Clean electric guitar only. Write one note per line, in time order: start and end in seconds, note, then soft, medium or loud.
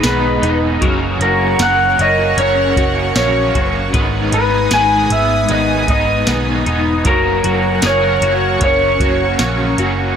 0.00 0.81 G#2 medium
0.00 0.89 B3 medium
0.00 0.41 D#4 medium
0.00 0.81 B4 medium
0.42 0.89 D#4 medium
0.81 3.93 F#3 medium
0.81 1.59 A#4 medium
1.21 1.98 F#4 medium
1.60 3.93 A#4 medium
1.98 2.18 E4 medium
2.18 2.76 F#4 soft
2.38 3.14 C#4 medium
2.77 3.53 F#4 medium
3.16 4.01 C#4 medium
3.54 4.01 F#4 medium
3.93 7.05 G#2 medium
3.93 4.70 B4 medium
4.33 5.10 D#4 medium
4.71 7.05 B4 medium
5.50 6.26 B3 medium
5.88 6.65 D#4 medium
6.28 7.13 B3 medium
6.66 7.13 D#4 medium
7.05 10.16 F#3 medium
7.05 7.83 A#4 medium
7.44 8.21 F#4 medium
7.83 8.02 G#4 medium
8.02 10.16 A#4 medium
8.22 8.99 F#4 medium
8.61 9.38 C#4 medium
9.00 9.77 F#4 medium
9.39 10.16 C#4 medium
9.79 10.16 F#4 medium